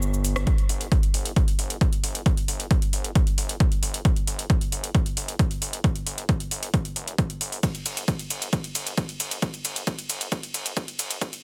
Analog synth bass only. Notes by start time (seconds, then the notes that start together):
Already playing: G1
0.69 G1
1.14 G1
1.59 G1
2.03 G1
2.48 G1
2.93 G1
3.38 G1
3.82 G1
4.27 G1
4.72 G1
5.17 G1
5.62 G1
6.06 G1
6.51 G1
6.96 F1
7.41 G1
7.86 G1
8.30 G1
8.75 G1
9.20 G1
9.65 G1
10.10 G1
10.54 G1
10.99 G1